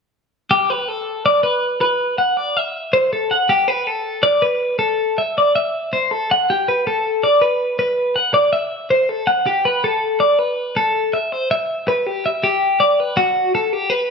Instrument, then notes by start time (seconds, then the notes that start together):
clean electric guitar
0.51 G4
0.70 B4
0.88 A4
1.26 D5
1.43 B4
1.81 B4
2.18 F#5
2.37 D5
2.57 E5
2.93 C5
3.13 A4
3.31 F#5
3.49 G4
3.68 B4
3.87 A4
4.23 D5
4.42 B4
4.79 A4
5.18 E5
5.38 D5
5.56 E5
5.93 C5
6.11 A4
6.31 F#5
6.50 G4
6.68 B4
6.87 A4
7.24 D5
7.42 B4
7.79 B4
8.16 F#5
8.34 D5
8.53 E5
8.90 C5
9.09 A4
9.27 F#5
9.46 G4
9.65 B4
9.84 A4
10.20 D5
10.39 B4
10.77 A4
11.14 E5
11.32 C5
11.51 E5
11.88 B4
12.07 G4
12.26 E5
12.44 G4
12.80 D5
13.00 B4
13.17 F#4
13.55 A4
13.73 G4
13.90 B4